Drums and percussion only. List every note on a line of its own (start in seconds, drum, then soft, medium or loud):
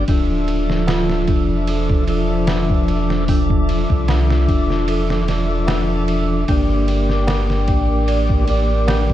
0.08 kick loud
0.08 ride medium
0.48 ride medium
0.70 snare soft
0.87 snare loud
0.87 ride medium
0.87 tabla na medium
1.10 snare soft
1.28 kick medium
1.28 ride medium
1.67 ride medium
1.90 kick medium
2.07 ride medium
2.47 snare loud
2.47 ride medium
2.47 tabla na medium
2.70 kick medium
2.88 ride medium
3.10 snare soft
3.28 kick loud
3.28 open hi-hat medium
3.50 kick loud
3.69 ride medium
3.90 kick medium
4.08 snare loud
4.08 ride medium
4.08 tabla na medium
4.30 snare medium
4.48 kick medium
4.48 ride medium
4.70 snare soft
4.88 ride medium
5.10 snare medium
5.28 snare medium
5.28 ride medium
5.67 snare loud
5.67 ride medium
5.67 tabla na medium
6.08 ride medium
6.48 kick loud
6.48 ride medium
6.88 ride medium
7.10 snare soft
7.27 snare loud
7.27 ride medium
7.27 tabla na medium
7.50 snare soft
7.68 kick medium
7.68 ride medium
8.08 ride medium
8.30 kick medium
8.48 ride medium
8.88 snare loud
8.88 ride medium
8.88 tabla na medium
9.10 kick medium